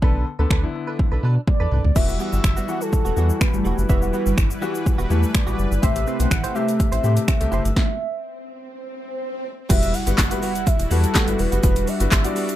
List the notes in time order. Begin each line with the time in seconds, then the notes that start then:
0.02 B1 D3 B3 D4 A4 B4, kick
0.26 muted clean electric guitar stroke
0.39 D2 D3 B3 D4 A4 B4
0.50 D2 D4 A4 B4, finger snap, kick
0.63 D3 B3 E4, muted clean electric guitar stroke
0.75 muted clean electric guitar stroke
0.87 D4 A4 B4
0.99 muted clean electric guitar stroke, kick
1.12 B1 D4 A4 B4
1.23 B2 D4 A4 B4
1.36 muted clean electric guitar stroke
1.47 D5, muted clean electric guitar stroke, kick, high tom
1.60 E2 D4 A4 B4
1.71 C2 D4 A4 B4, mid tom
1.84 D2, muted clean electric guitar stroke, floor tom
1.95 E1 E3 G3 B3 E4 F#4 E5, kick, crash, shaker
2.09 F#4, shaker
2.20 G3 B3 F#4 E5, shaker
2.33 G1 G3 B3 F#4, shaker
2.44 F#1 E3, finger snap, muted clean electric guitar stroke, kick, shaker
2.57 G3 B3 F#4, shaker
2.68 E3 G3 B3 F#4, shaker
2.81 A4, muted clean electric guitar stroke, shaker
2.92 muted clean electric guitar stroke, kick, shaker
3.05 E1 G3 B3 F#4, shaker
3.16 E2 E3 G3 B3 F#4, shaker
3.29 muted clean electric guitar stroke, shaker
3.41 B3 B4, finger snap, kick, shaker
3.54 G1 E3 G3 A3, muted clean electric guitar stroke, shaker
3.65 E1 G3 B3 F#4 B4, shaker
3.78 F#1, muted clean electric guitar stroke, shaker
3.89 E1 E3 G3 B3 F#4 B4 E5, kick, shaker
4.02 F#4, shaker
4.13 G3 B3 F#4, shaker
4.26 G1 G3 B3 F#4, shaker
4.37 G1 E3, finger snap, muted clean electric guitar stroke, kick, shaker
4.50 muted clean electric guitar stroke, shaker
4.62 E3 G3 B3 F#4, shaker
4.74 muted clean electric guitar stroke, shaker
4.86 muted clean electric guitar stroke, kick, shaker
4.98 E1 G3 B3 F#4, shaker
5.10 E2 E3 G3 A3 B3 F#4, shaker
5.23 muted clean electric guitar stroke, shaker
5.34 B3 D5, finger snap, muted clean electric guitar stroke, kick, shaker
5.47 A1 E3 G3 B3 F#4, shaker
5.58 F#1, muted clean electric guitar stroke, shaker
5.71 G1, muted clean electric guitar stroke, shaker
5.82 A1 C3 A3 C4 E4 G4 C5 E5, kick, closed hi-hat, shaker
5.96 G4, closed hi-hat, shaker
6.07 C4 E4 G4 C5, shaker
6.19 B1 A3 E4 G4 C5 F#5, closed hi-hat, shaker
6.31 A1 E3, finger snap, muted clean electric guitar stroke, kick, closed hi-hat, shaker
6.44 E4 G4 C5, closed hi-hat, shaker
6.55 C3 A3 E4 G4 C5 E5, shaker
6.68 muted clean electric guitar stroke, closed hi-hat, shaker
6.79 muted clean electric guitar stroke, kick, closed hi-hat, shaker
6.92 A1 E4 G4 C5, closed hi-hat, shaker
7.03 A2 C3 A3 E4 G4 C5, shaker
7.16 muted clean electric guitar stroke, closed hi-hat, shaker
7.28 C4, finger snap, kick, closed hi-hat, shaker
7.41 C2 C3 A3 G4, muted clean electric guitar stroke, closed hi-hat, shaker
7.52 F#1 E4 G4 C5, shaker
7.65 G1, muted clean electric guitar stroke, closed hi-hat, shaker
7.76 kick, snare, swell
9.69 E1 G3 B3 E4 F#4 B4 E5, kick, closed hi-hat, crash, impact, shaker
9.83 closed hi-hat, shaker
9.94 F#5, muted clean electric guitar stroke, open hi-hat, shaker
10.06 G1 G3 B3 E4 F#4 B4, closed hi-hat, shaker
10.18 F#1, kick, snare, clap, closed hi-hat, shaker
10.31 G3 B3 E4 F#4 B4, closed hi-hat, shaker
10.42 G3 B3 F#4 F#5, open hi-hat, shaker
10.55 muted clean electric guitar stroke, closed hi-hat, shaker
10.67 E5, kick, closed hi-hat, shaker
10.79 E1, muted clean electric guitar stroke, closed hi-hat, shaker
10.91 E2 G3 B3 E4 F#4 A4 B4, open hi-hat, shaker
11.04 muted clean electric guitar stroke, closed hi-hat, shaker
11.15 G3 B3 F#4, kick, snare, clap, closed hi-hat, shaker
11.28 G1 G3 E4 F#4 B4, muted clean electric guitar stroke, closed hi-hat, shaker
11.39 E1 B4, muted clean electric guitar stroke, open hi-hat, shaker
11.52 F#1 G3 B3 F#4, closed hi-hat, shaker
11.63 E1 G3 B3 D4 E4 F#4 B4, kick, closed hi-hat, shaker
11.76 muted clean electric guitar stroke, closed hi-hat, shaker
11.87 E5, muted clean electric guitar stroke, open hi-hat, shaker
12.00 G1 G3 B3 E4 F#4 B4, closed hi-hat, shaker
12.12 G1, muted clean electric guitar stroke, kick, snare, clap, closed hi-hat, shaker
12.24 G3 B3 E4 F#4 D5, closed hi-hat, shaker
12.36 G3 B3 F#4, open hi-hat, shaker
12.49 muted clean electric guitar stroke, closed hi-hat, shaker